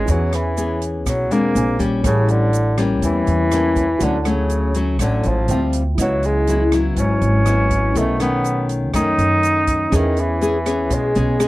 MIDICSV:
0, 0, Header, 1, 6, 480
1, 0, Start_track
1, 0, Tempo, 492611
1, 75, Time_signature, 4, 2, 24, 8
1, 11185, End_track
2, 0, Start_track
2, 0, Title_t, "Grand piano"
2, 0, Program_c, 0, 0
2, 0, Control_c, 0, 64, 127
2, 51, Note_on_c, 0, 64, 53
2, 65, Note_on_c, 0, 71, 46
2, 87, Control_c, 0, 64, 0
2, 90, Note_on_c, 0, 73, 49
2, 106, Note_on_c, 0, 80, 53
2, 232, Control_c, 0, 64, 127
2, 1473, Note_off_c, 0, 64, 0
2, 1481, Note_off_c, 0, 71, 0
2, 1493, Note_off_c, 0, 73, 0
2, 1501, Note_off_c, 0, 80, 0
2, 1513, Note_on_c, 0, 70, 48
2, 1519, Note_on_c, 0, 72, 44
2, 1528, Control_c, 0, 64, 0
2, 1528, Note_on_c, 0, 80, 55
2, 1697, Control_c, 0, 64, 127
2, 1962, Note_on_c, 0, 67, 52
2, 1968, Note_off_c, 0, 70, 0
2, 1982, Note_on_c, 0, 70, 49
2, 1997, Note_off_c, 0, 72, 0
2, 2001, Note_off_c, 0, 80, 0
2, 2004, Note_on_c, 0, 73, 46
2, 2006, Control_c, 0, 64, 0
2, 2025, Note_on_c, 0, 81, 55
2, 2172, Control_c, 0, 64, 127
2, 3389, Note_off_c, 0, 67, 0
2, 3399, Note_off_c, 0, 70, 0
2, 3410, Note_off_c, 0, 73, 0
2, 3415, Note_on_c, 0, 67, 40
2, 3421, Note_off_c, 0, 81, 0
2, 3429, Note_on_c, 0, 70, 36
2, 3435, Note_on_c, 0, 73, 35
2, 3445, Note_on_c, 0, 81, 42
2, 3882, Note_on_c, 0, 66, 54
2, 3888, Note_off_c, 0, 73, 0
2, 3903, Note_on_c, 0, 73, 46
2, 3905, Note_off_c, 0, 67, 0
2, 3911, Note_off_c, 0, 70, 0
2, 3920, Note_off_c, 0, 81, 0
2, 3920, Note_on_c, 0, 78, 46
2, 3928, Control_c, 0, 64, 0
2, 3939, Note_on_c, 0, 81, 56
2, 4103, Control_c, 0, 64, 127
2, 5309, Note_off_c, 0, 66, 0
2, 5319, Note_off_c, 0, 73, 0
2, 5328, Note_off_c, 0, 78, 0
2, 5338, Note_off_c, 0, 81, 0
2, 5340, Note_on_c, 0, 65, 46
2, 5349, Note_on_c, 0, 72, 44
2, 5357, Note_on_c, 0, 76, 48
2, 5366, Control_c, 0, 64, 0
2, 5367, Note_on_c, 0, 79, 54
2, 5534, Control_c, 0, 64, 127
2, 5795, Note_on_c, 0, 64, 47
2, 5816, Note_on_c, 0, 71, 47
2, 5827, Note_off_c, 0, 65, 0
2, 5831, Note_off_c, 0, 72, 0
2, 5835, Note_off_c, 0, 76, 0
2, 5836, Note_on_c, 0, 75, 47
2, 5841, Note_off_c, 0, 79, 0
2, 5847, Control_c, 0, 64, 0
2, 5856, Note_on_c, 0, 78, 59
2, 6035, Control_c, 0, 64, 127
2, 7225, Note_off_c, 0, 64, 0
2, 7236, Note_off_c, 0, 71, 0
2, 7246, Note_off_c, 0, 75, 0
2, 7256, Note_off_c, 0, 78, 0
2, 7257, Note_on_c, 0, 64, 38
2, 7265, Note_on_c, 0, 71, 37
2, 7274, Note_on_c, 0, 75, 33
2, 7283, Note_on_c, 0, 78, 41
2, 7716, Note_on_c, 0, 61, 55
2, 7740, Note_on_c, 0, 69, 49
2, 7741, Note_off_c, 0, 71, 0
2, 7745, Note_off_c, 0, 64, 0
2, 7754, Note_off_c, 0, 75, 0
2, 7755, Note_on_c, 0, 71, 48
2, 7758, Note_off_c, 0, 78, 0
2, 7765, Control_c, 0, 64, 0
2, 7776, Note_on_c, 0, 75, 57
2, 7922, Control_c, 0, 64, 127
2, 9616, Note_off_c, 0, 61, 0
2, 9628, Note_off_c, 0, 69, 0
2, 9636, Note_off_c, 0, 71, 0
2, 9646, Note_off_c, 0, 75, 0
2, 9646, Note_on_c, 0, 61, 53
2, 9665, Note_on_c, 0, 68, 47
2, 9684, Note_on_c, 0, 71, 47
2, 9687, Control_c, 0, 64, 0
2, 9702, Note_on_c, 0, 76, 57
2, 9836, Control_c, 0, 64, 127
2, 11185, Note_off_c, 0, 61, 0
2, 11185, Note_off_c, 0, 68, 0
2, 11185, Note_off_c, 0, 71, 0
2, 11185, Note_off_c, 0, 76, 0
2, 11185, End_track
3, 0, Start_track
3, 0, Title_t, "Nylon-string guitar"
3, 0, Program_c, 1, 24
3, 0, Note_on_c, 1, 59, 64
3, 0, Note_on_c, 1, 61, 70
3, 0, Note_on_c, 1, 68, 65
3, 73, Note_on_c, 1, 52, 51
3, 518, Note_off_c, 1, 59, 0
3, 521, Note_off_c, 1, 61, 0
3, 522, Note_off_c, 1, 68, 0
3, 560, Note_on_c, 1, 59, 61
3, 563, Note_on_c, 1, 61, 57
3, 568, Note_on_c, 1, 68, 59
3, 1010, Note_off_c, 1, 52, 0
3, 1038, Note_on_c, 1, 47, 54
3, 1239, Note_off_c, 1, 59, 0
3, 1241, Note_off_c, 1, 61, 0
3, 1242, Note_off_c, 1, 68, 0
3, 1275, Note_on_c, 1, 56, 62
3, 1279, Note_on_c, 1, 60, 63
3, 1281, Note_on_c, 1, 62, 72
3, 1492, Note_off_c, 1, 47, 0
3, 1717, Note_off_c, 1, 56, 0
3, 1717, Note_off_c, 1, 60, 0
3, 1720, Note_off_c, 1, 62, 0
3, 1746, Note_on_c, 1, 55, 66
3, 1752, Note_on_c, 1, 61, 68
3, 1989, Note_on_c, 1, 45, 57
3, 2432, Note_off_c, 1, 55, 0
3, 2434, Note_off_c, 1, 61, 0
3, 2708, Note_on_c, 1, 55, 66
3, 2714, Note_on_c, 1, 58, 57
3, 2717, Note_on_c, 1, 61, 73
3, 2927, Note_off_c, 1, 45, 0
3, 2949, Note_on_c, 1, 52, 63
3, 3393, Note_off_c, 1, 55, 0
3, 3396, Note_off_c, 1, 58, 0
3, 3396, Note_off_c, 1, 61, 0
3, 3427, Note_on_c, 1, 55, 55
3, 3430, Note_on_c, 1, 58, 54
3, 3437, Note_on_c, 1, 61, 60
3, 3753, Note_off_c, 1, 55, 0
3, 3755, Note_off_c, 1, 58, 0
3, 3757, Note_off_c, 1, 61, 0
3, 3887, Note_off_c, 1, 52, 0
3, 3909, Note_on_c, 1, 54, 57
3, 3913, Note_on_c, 1, 57, 55
3, 3919, Note_on_c, 1, 61, 54
3, 4053, Note_off_c, 1, 54, 0
3, 4056, Note_off_c, 1, 57, 0
3, 4056, Note_off_c, 1, 61, 0
3, 4145, Note_on_c, 1, 54, 63
3, 4149, Note_on_c, 1, 57, 61
3, 4153, Note_on_c, 1, 61, 69
3, 4591, Note_off_c, 1, 54, 0
3, 4592, Note_off_c, 1, 57, 0
3, 4595, Note_off_c, 1, 61, 0
3, 4635, Note_on_c, 1, 54, 65
3, 4636, Note_on_c, 1, 57, 66
3, 4640, Note_on_c, 1, 61, 67
3, 4836, Note_off_c, 1, 54, 0
3, 4836, Note_off_c, 1, 57, 0
3, 4838, Note_off_c, 1, 61, 0
3, 4873, Note_on_c, 1, 45, 58
3, 4878, Note_on_c, 1, 54, 57
3, 4880, Note_on_c, 1, 57, 60
3, 4885, Note_on_c, 1, 61, 62
3, 5330, Note_off_c, 1, 45, 0
3, 5336, Note_off_c, 1, 54, 0
3, 5338, Note_off_c, 1, 57, 0
3, 5340, Note_off_c, 1, 61, 0
3, 5364, Note_on_c, 1, 55, 55
3, 5369, Note_on_c, 1, 60, 56
3, 5371, Note_on_c, 1, 65, 60
3, 5668, Note_off_c, 1, 55, 0
3, 5670, Note_off_c, 1, 60, 0
3, 5671, Note_off_c, 1, 65, 0
3, 5837, Note_on_c, 1, 54, 47
3, 5838, Note_on_c, 1, 49, 53
3, 5839, Note_on_c, 1, 59, 53
3, 5846, Note_on_c, 1, 64, 58
3, 6277, Note_off_c, 1, 54, 0
3, 6277, Note_off_c, 1, 59, 0
3, 6282, Note_off_c, 1, 64, 0
3, 6317, Note_on_c, 1, 54, 56
3, 6323, Note_on_c, 1, 59, 54
3, 6329, Note_on_c, 1, 64, 68
3, 6457, Note_off_c, 1, 54, 0
3, 6460, Note_off_c, 1, 59, 0
3, 6461, Note_off_c, 1, 64, 0
3, 6555, Note_on_c, 1, 54, 67
3, 6559, Note_on_c, 1, 59, 60
3, 6564, Note_on_c, 1, 64, 72
3, 6772, Note_off_c, 1, 49, 0
3, 6794, Note_on_c, 1, 44, 61
3, 7237, Note_off_c, 1, 54, 0
3, 7237, Note_off_c, 1, 59, 0
3, 7240, Note_off_c, 1, 64, 0
3, 7268, Note_on_c, 1, 54, 53
3, 7274, Note_on_c, 1, 59, 57
3, 7276, Note_on_c, 1, 64, 64
3, 7730, Note_off_c, 1, 44, 0
3, 7732, Note_off_c, 1, 54, 0
3, 7734, Note_off_c, 1, 59, 0
3, 7735, Note_off_c, 1, 64, 0
3, 7745, Note_on_c, 1, 47, 52
3, 7748, Note_on_c, 1, 51, 57
3, 7753, Note_on_c, 1, 61, 63
3, 7756, Note_on_c, 1, 57, 54
3, 7952, Note_off_c, 1, 51, 0
3, 7953, Note_off_c, 1, 57, 0
3, 7955, Note_off_c, 1, 61, 0
3, 7987, Note_on_c, 1, 51, 57
3, 7990, Note_on_c, 1, 57, 54
3, 7999, Note_on_c, 1, 61, 71
3, 8672, Note_off_c, 1, 51, 0
3, 8674, Note_off_c, 1, 57, 0
3, 8676, Note_off_c, 1, 61, 0
3, 8686, Note_off_c, 1, 47, 0
3, 8707, Note_on_c, 1, 42, 63
3, 8709, Note_on_c, 1, 51, 58
3, 8714, Note_on_c, 1, 57, 64
3, 8717, Note_on_c, 1, 61, 61
3, 9632, Note_off_c, 1, 51, 0
3, 9635, Note_off_c, 1, 57, 0
3, 9637, Note_off_c, 1, 61, 0
3, 9646, Note_off_c, 1, 42, 0
3, 9663, Note_on_c, 1, 52, 54
3, 9665, Note_on_c, 1, 59, 55
3, 9672, Note_on_c, 1, 61, 52
3, 9676, Note_on_c, 1, 68, 59
3, 10112, Note_off_c, 1, 59, 0
3, 10113, Note_off_c, 1, 61, 0
3, 10117, Note_off_c, 1, 68, 0
3, 10148, Note_on_c, 1, 59, 59
3, 10152, Note_on_c, 1, 61, 62
3, 10157, Note_on_c, 1, 68, 66
3, 10292, Note_off_c, 1, 59, 0
3, 10293, Note_off_c, 1, 61, 0
3, 10296, Note_off_c, 1, 68, 0
3, 10384, Note_on_c, 1, 59, 74
3, 10388, Note_on_c, 1, 61, 61
3, 10391, Note_on_c, 1, 68, 65
3, 10604, Note_off_c, 1, 52, 0
3, 10623, Note_on_c, 1, 47, 62
3, 10831, Note_off_c, 1, 59, 0
3, 10833, Note_off_c, 1, 61, 0
3, 10833, Note_off_c, 1, 68, 0
3, 10873, Note_on_c, 1, 59, 70
3, 10873, Note_on_c, 1, 61, 62
3, 10883, Note_on_c, 1, 68, 71
3, 11075, Note_off_c, 1, 59, 0
3, 11075, Note_off_c, 1, 61, 0
3, 11080, Note_off_c, 1, 68, 0
3, 11104, Note_on_c, 1, 59, 64
3, 11109, Note_on_c, 1, 61, 58
3, 11114, Note_on_c, 1, 68, 67
3, 11185, Note_off_c, 1, 47, 0
3, 11185, Note_off_c, 1, 59, 0
3, 11185, Note_off_c, 1, 61, 0
3, 11185, Note_off_c, 1, 68, 0
3, 11185, End_track
4, 0, Start_track
4, 0, Title_t, "Bassoon"
4, 0, Program_c, 2, 70
4, 0, Note_on_c, 2, 56, 111
4, 100, Note_on_c, 2, 54, 97
4, 114, Note_off_c, 2, 56, 0
4, 338, Note_on_c, 2, 52, 83
4, 353, Note_off_c, 2, 54, 0
4, 807, Note_off_c, 2, 52, 0
4, 1055, Note_on_c, 2, 54, 91
4, 1293, Note_on_c, 2, 58, 101
4, 1308, Note_off_c, 2, 54, 0
4, 1764, Note_off_c, 2, 58, 0
4, 2011, Note_on_c, 2, 49, 103
4, 2248, Note_on_c, 2, 50, 114
4, 2262, Note_off_c, 2, 49, 0
4, 2721, Note_off_c, 2, 50, 0
4, 2971, Note_on_c, 2, 52, 109
4, 3937, Note_on_c, 2, 50, 96
4, 3952, Note_off_c, 2, 52, 0
4, 4112, Note_off_c, 2, 50, 0
4, 4112, Note_on_c, 2, 50, 61
4, 4178, Note_on_c, 2, 49, 90
4, 4193, Note_off_c, 2, 50, 0
4, 4646, Note_off_c, 2, 49, 0
4, 4892, Note_on_c, 2, 50, 90
4, 5137, Note_on_c, 2, 53, 105
4, 5151, Note_off_c, 2, 50, 0
4, 5605, Note_off_c, 2, 53, 0
4, 5861, Note_on_c, 2, 54, 100
4, 6097, Note_on_c, 2, 56, 110
4, 6112, Note_off_c, 2, 54, 0
4, 6565, Note_off_c, 2, 56, 0
4, 6821, Note_on_c, 2, 61, 107
4, 7772, Note_on_c, 2, 57, 92
4, 7786, Note_off_c, 2, 61, 0
4, 8003, Note_off_c, 2, 57, 0
4, 8010, Note_on_c, 2, 59, 89
4, 8449, Note_off_c, 2, 59, 0
4, 8728, Note_on_c, 2, 63, 119
4, 9699, Note_on_c, 2, 51, 99
4, 9713, Note_off_c, 2, 63, 0
4, 9941, Note_on_c, 2, 52, 100
4, 9956, Note_off_c, 2, 51, 0
4, 10659, Note_on_c, 2, 56, 97
4, 10673, Note_off_c, 2, 52, 0
4, 11185, Note_off_c, 2, 56, 0
4, 11185, End_track
5, 0, Start_track
5, 0, Title_t, "Upright bass"
5, 0, Program_c, 3, 32
5, 77, Note_on_c, 3, 40, 94
5, 1035, Note_off_c, 3, 40, 0
5, 1035, Note_on_c, 3, 35, 92
5, 1271, Note_off_c, 3, 35, 0
5, 1271, Note_on_c, 3, 40, 83
5, 1496, Note_off_c, 3, 40, 0
5, 1512, Note_on_c, 3, 34, 99
5, 1959, Note_off_c, 3, 34, 0
5, 1989, Note_on_c, 3, 33, 87
5, 2943, Note_off_c, 3, 33, 0
5, 2943, Note_on_c, 3, 40, 88
5, 3171, Note_off_c, 3, 40, 0
5, 3189, Note_on_c, 3, 40, 84
5, 3872, Note_off_c, 3, 40, 0
5, 3903, Note_on_c, 3, 38, 93
5, 4866, Note_off_c, 3, 38, 0
5, 4866, Note_on_c, 3, 33, 93
5, 5093, Note_off_c, 3, 33, 0
5, 5117, Note_on_c, 3, 33, 89
5, 5339, Note_off_c, 3, 33, 0
5, 5346, Note_on_c, 3, 38, 98
5, 5796, Note_off_c, 3, 38, 0
5, 5827, Note_on_c, 3, 37, 84
5, 6789, Note_off_c, 3, 37, 0
5, 6789, Note_on_c, 3, 32, 84
5, 7014, Note_off_c, 3, 32, 0
5, 7031, Note_on_c, 3, 32, 90
5, 7713, Note_off_c, 3, 32, 0
5, 7753, Note_on_c, 3, 35, 88
5, 8709, Note_off_c, 3, 35, 0
5, 8709, Note_on_c, 3, 42, 90
5, 8935, Note_off_c, 3, 42, 0
5, 8946, Note_on_c, 3, 42, 88
5, 9631, Note_off_c, 3, 42, 0
5, 9670, Note_on_c, 3, 40, 91
5, 10626, Note_off_c, 3, 40, 0
5, 10626, Note_on_c, 3, 35, 84
5, 10853, Note_off_c, 3, 35, 0
5, 10873, Note_on_c, 3, 35, 92
5, 11185, Note_off_c, 3, 35, 0
5, 11185, End_track
6, 0, Start_track
6, 0, Title_t, "Drums"
6, 76, Note_on_c, 9, 82, 61
6, 77, Note_on_c, 9, 36, 58
6, 78, Note_on_c, 9, 42, 53
6, 173, Note_off_c, 9, 82, 0
6, 174, Note_off_c, 9, 36, 0
6, 175, Note_off_c, 9, 42, 0
6, 318, Note_on_c, 9, 37, 58
6, 318, Note_on_c, 9, 42, 46
6, 323, Note_on_c, 9, 82, 25
6, 415, Note_off_c, 9, 37, 0
6, 415, Note_off_c, 9, 42, 0
6, 421, Note_off_c, 9, 82, 0
6, 558, Note_on_c, 9, 42, 44
6, 562, Note_on_c, 9, 82, 64
6, 655, Note_off_c, 9, 42, 0
6, 659, Note_off_c, 9, 82, 0
6, 795, Note_on_c, 9, 42, 47
6, 803, Note_on_c, 9, 82, 27
6, 893, Note_off_c, 9, 42, 0
6, 901, Note_off_c, 9, 82, 0
6, 1034, Note_on_c, 9, 36, 58
6, 1038, Note_on_c, 9, 37, 54
6, 1038, Note_on_c, 9, 42, 56
6, 1038, Note_on_c, 9, 82, 65
6, 1132, Note_off_c, 9, 36, 0
6, 1135, Note_off_c, 9, 37, 0
6, 1135, Note_off_c, 9, 42, 0
6, 1136, Note_off_c, 9, 82, 0
6, 1279, Note_on_c, 9, 42, 47
6, 1283, Note_on_c, 9, 82, 28
6, 1377, Note_off_c, 9, 42, 0
6, 1381, Note_off_c, 9, 82, 0
6, 1518, Note_on_c, 9, 42, 47
6, 1518, Note_on_c, 9, 82, 66
6, 1615, Note_off_c, 9, 42, 0
6, 1616, Note_off_c, 9, 82, 0
6, 1751, Note_on_c, 9, 36, 63
6, 1753, Note_on_c, 9, 42, 49
6, 1760, Note_on_c, 9, 82, 28
6, 1848, Note_off_c, 9, 36, 0
6, 1850, Note_off_c, 9, 42, 0
6, 1858, Note_off_c, 9, 82, 0
6, 1988, Note_on_c, 9, 36, 60
6, 1989, Note_on_c, 9, 37, 56
6, 1989, Note_on_c, 9, 42, 54
6, 1998, Note_on_c, 9, 82, 65
6, 2085, Note_off_c, 9, 36, 0
6, 2086, Note_off_c, 9, 37, 0
6, 2086, Note_off_c, 9, 42, 0
6, 2095, Note_off_c, 9, 82, 0
6, 2227, Note_on_c, 9, 42, 43
6, 2241, Note_on_c, 9, 82, 26
6, 2324, Note_off_c, 9, 42, 0
6, 2338, Note_off_c, 9, 82, 0
6, 2465, Note_on_c, 9, 42, 40
6, 2479, Note_on_c, 9, 82, 67
6, 2563, Note_off_c, 9, 42, 0
6, 2577, Note_off_c, 9, 82, 0
6, 2706, Note_on_c, 9, 37, 65
6, 2706, Note_on_c, 9, 42, 43
6, 2714, Note_on_c, 9, 82, 27
6, 2803, Note_off_c, 9, 37, 0
6, 2803, Note_off_c, 9, 42, 0
6, 2812, Note_off_c, 9, 82, 0
6, 2945, Note_on_c, 9, 36, 58
6, 2945, Note_on_c, 9, 42, 56
6, 2953, Note_on_c, 9, 82, 65
6, 3042, Note_off_c, 9, 36, 0
6, 3043, Note_off_c, 9, 42, 0
6, 3051, Note_off_c, 9, 82, 0
6, 3186, Note_on_c, 9, 82, 26
6, 3188, Note_on_c, 9, 42, 41
6, 3284, Note_off_c, 9, 82, 0
6, 3285, Note_off_c, 9, 42, 0
6, 3426, Note_on_c, 9, 37, 67
6, 3426, Note_on_c, 9, 42, 43
6, 3427, Note_on_c, 9, 82, 65
6, 3524, Note_off_c, 9, 37, 0
6, 3524, Note_off_c, 9, 42, 0
6, 3525, Note_off_c, 9, 82, 0
6, 3664, Note_on_c, 9, 82, 28
6, 3666, Note_on_c, 9, 36, 64
6, 3668, Note_on_c, 9, 42, 48
6, 3761, Note_off_c, 9, 82, 0
6, 3763, Note_off_c, 9, 36, 0
6, 3765, Note_off_c, 9, 42, 0
6, 3901, Note_on_c, 9, 42, 59
6, 3902, Note_on_c, 9, 82, 65
6, 3904, Note_on_c, 9, 36, 54
6, 3999, Note_off_c, 9, 42, 0
6, 4000, Note_off_c, 9, 82, 0
6, 4002, Note_off_c, 9, 36, 0
6, 4143, Note_on_c, 9, 37, 57
6, 4143, Note_on_c, 9, 42, 45
6, 4151, Note_on_c, 9, 82, 25
6, 4240, Note_off_c, 9, 37, 0
6, 4240, Note_off_c, 9, 42, 0
6, 4249, Note_off_c, 9, 82, 0
6, 4381, Note_on_c, 9, 42, 44
6, 4393, Note_on_c, 9, 82, 61
6, 4479, Note_off_c, 9, 42, 0
6, 4491, Note_off_c, 9, 82, 0
6, 4623, Note_on_c, 9, 42, 48
6, 4638, Note_on_c, 9, 82, 27
6, 4720, Note_off_c, 9, 42, 0
6, 4735, Note_off_c, 9, 82, 0
6, 4863, Note_on_c, 9, 37, 55
6, 4863, Note_on_c, 9, 42, 62
6, 4865, Note_on_c, 9, 36, 52
6, 4879, Note_on_c, 9, 82, 62
6, 4961, Note_off_c, 9, 37, 0
6, 4961, Note_off_c, 9, 42, 0
6, 4963, Note_off_c, 9, 36, 0
6, 4976, Note_off_c, 9, 82, 0
6, 5100, Note_on_c, 9, 42, 43
6, 5116, Note_on_c, 9, 82, 27
6, 5198, Note_off_c, 9, 42, 0
6, 5214, Note_off_c, 9, 82, 0
6, 5339, Note_on_c, 9, 42, 46
6, 5360, Note_on_c, 9, 82, 65
6, 5437, Note_off_c, 9, 42, 0
6, 5458, Note_off_c, 9, 82, 0
6, 5582, Note_on_c, 9, 42, 53
6, 5601, Note_on_c, 9, 82, 29
6, 5680, Note_off_c, 9, 42, 0
6, 5699, Note_off_c, 9, 82, 0
6, 5826, Note_on_c, 9, 36, 55
6, 5826, Note_on_c, 9, 37, 55
6, 5826, Note_on_c, 9, 42, 56
6, 5841, Note_on_c, 9, 82, 67
6, 5923, Note_off_c, 9, 36, 0
6, 5923, Note_off_c, 9, 37, 0
6, 5923, Note_off_c, 9, 42, 0
6, 5938, Note_off_c, 9, 82, 0
6, 6069, Note_on_c, 9, 42, 43
6, 6082, Note_on_c, 9, 82, 25
6, 6166, Note_off_c, 9, 42, 0
6, 6179, Note_off_c, 9, 82, 0
6, 6307, Note_on_c, 9, 42, 43
6, 6326, Note_on_c, 9, 82, 63
6, 6405, Note_off_c, 9, 42, 0
6, 6424, Note_off_c, 9, 82, 0
6, 6547, Note_on_c, 9, 37, 66
6, 6547, Note_on_c, 9, 42, 45
6, 6567, Note_on_c, 9, 82, 25
6, 6645, Note_off_c, 9, 37, 0
6, 6645, Note_off_c, 9, 42, 0
6, 6664, Note_off_c, 9, 82, 0
6, 6786, Note_on_c, 9, 42, 52
6, 6787, Note_on_c, 9, 36, 59
6, 6802, Note_on_c, 9, 82, 64
6, 6884, Note_off_c, 9, 42, 0
6, 6885, Note_off_c, 9, 36, 0
6, 6900, Note_off_c, 9, 82, 0
6, 7031, Note_on_c, 9, 42, 42
6, 7041, Note_on_c, 9, 82, 27
6, 7129, Note_off_c, 9, 42, 0
6, 7138, Note_off_c, 9, 82, 0
6, 7266, Note_on_c, 9, 37, 64
6, 7266, Note_on_c, 9, 42, 45
6, 7276, Note_on_c, 9, 82, 63
6, 7363, Note_off_c, 9, 37, 0
6, 7363, Note_off_c, 9, 42, 0
6, 7374, Note_off_c, 9, 82, 0
6, 7509, Note_on_c, 9, 42, 46
6, 7510, Note_on_c, 9, 36, 62
6, 7518, Note_on_c, 9, 82, 27
6, 7606, Note_off_c, 9, 42, 0
6, 7607, Note_off_c, 9, 36, 0
6, 7616, Note_off_c, 9, 82, 0
6, 7750, Note_on_c, 9, 36, 58
6, 7751, Note_on_c, 9, 42, 54
6, 7759, Note_on_c, 9, 82, 65
6, 7848, Note_off_c, 9, 36, 0
6, 7849, Note_off_c, 9, 42, 0
6, 7857, Note_off_c, 9, 82, 0
6, 7990, Note_on_c, 9, 37, 59
6, 7990, Note_on_c, 9, 42, 45
6, 7995, Note_on_c, 9, 82, 26
6, 8088, Note_off_c, 9, 37, 0
6, 8088, Note_off_c, 9, 42, 0
6, 8093, Note_off_c, 9, 82, 0
6, 8228, Note_on_c, 9, 42, 39
6, 8239, Note_on_c, 9, 82, 66
6, 8325, Note_off_c, 9, 42, 0
6, 8336, Note_off_c, 9, 82, 0
6, 8469, Note_on_c, 9, 42, 45
6, 8485, Note_on_c, 9, 82, 28
6, 8566, Note_off_c, 9, 42, 0
6, 8582, Note_off_c, 9, 82, 0
6, 8706, Note_on_c, 9, 37, 59
6, 8706, Note_on_c, 9, 42, 55
6, 8708, Note_on_c, 9, 36, 55
6, 8726, Note_on_c, 9, 82, 66
6, 8804, Note_off_c, 9, 37, 0
6, 8804, Note_off_c, 9, 42, 0
6, 8806, Note_off_c, 9, 36, 0
6, 8824, Note_off_c, 9, 82, 0
6, 8950, Note_on_c, 9, 42, 47
6, 8966, Note_on_c, 9, 82, 28
6, 9048, Note_off_c, 9, 42, 0
6, 9063, Note_off_c, 9, 82, 0
6, 9189, Note_on_c, 9, 42, 47
6, 9206, Note_on_c, 9, 82, 68
6, 9287, Note_off_c, 9, 42, 0
6, 9304, Note_off_c, 9, 82, 0
6, 9426, Note_on_c, 9, 42, 53
6, 9428, Note_on_c, 9, 36, 63
6, 9444, Note_on_c, 9, 82, 29
6, 9523, Note_off_c, 9, 42, 0
6, 9526, Note_off_c, 9, 36, 0
6, 9541, Note_off_c, 9, 82, 0
6, 9668, Note_on_c, 9, 37, 55
6, 9668, Note_on_c, 9, 42, 57
6, 9669, Note_on_c, 9, 36, 59
6, 9680, Note_on_c, 9, 82, 69
6, 9765, Note_off_c, 9, 37, 0
6, 9765, Note_off_c, 9, 42, 0
6, 9766, Note_off_c, 9, 36, 0
6, 9778, Note_off_c, 9, 82, 0
6, 9907, Note_on_c, 9, 42, 43
6, 9921, Note_on_c, 9, 82, 26
6, 10004, Note_off_c, 9, 42, 0
6, 10018, Note_off_c, 9, 82, 0
6, 10147, Note_on_c, 9, 42, 41
6, 10161, Note_on_c, 9, 82, 65
6, 10245, Note_off_c, 9, 42, 0
6, 10258, Note_off_c, 9, 82, 0
6, 10389, Note_on_c, 9, 37, 58
6, 10389, Note_on_c, 9, 42, 47
6, 10401, Note_on_c, 9, 82, 28
6, 10486, Note_off_c, 9, 37, 0
6, 10486, Note_off_c, 9, 42, 0
6, 10498, Note_off_c, 9, 82, 0
6, 10625, Note_on_c, 9, 42, 55
6, 10628, Note_on_c, 9, 36, 60
6, 10635, Note_on_c, 9, 82, 65
6, 10723, Note_off_c, 9, 42, 0
6, 10726, Note_off_c, 9, 36, 0
6, 10732, Note_off_c, 9, 82, 0
6, 10866, Note_on_c, 9, 42, 45
6, 10876, Note_on_c, 9, 82, 29
6, 10964, Note_off_c, 9, 42, 0
6, 10973, Note_off_c, 9, 82, 0
6, 11108, Note_on_c, 9, 37, 64
6, 11108, Note_on_c, 9, 42, 44
6, 11114, Note_on_c, 9, 82, 64
6, 11185, Note_off_c, 9, 37, 0
6, 11185, Note_off_c, 9, 42, 0
6, 11185, Note_off_c, 9, 82, 0
6, 11185, End_track
0, 0, End_of_file